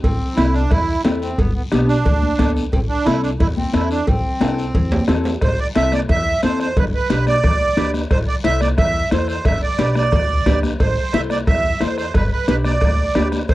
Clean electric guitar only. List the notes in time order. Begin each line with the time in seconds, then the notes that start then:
0.37 C4 E4 A4
1.05 C4 E4 A4
1.72 B3 D4 G4
2.39 B3 D4 A4
3.06 C4 E4 A4
3.73 C4 E4 A4
4.41 C4 E4 A4
5.08 C4 E4 A4
5.75 C4 E4 A4
6.43 C4 E4 A4
7.10 D4 G4 B4
7.77 D4 G4 B4
8.44 E4 A4 C5
9.12 E4 A4 C5
9.79 D4 G4 B4
10.46 D4 G4 B4
11.14 E4 A4 C5
11.80 E4 A4 C5
12.48 D4 G4 B4
13.15 D4 G4 B4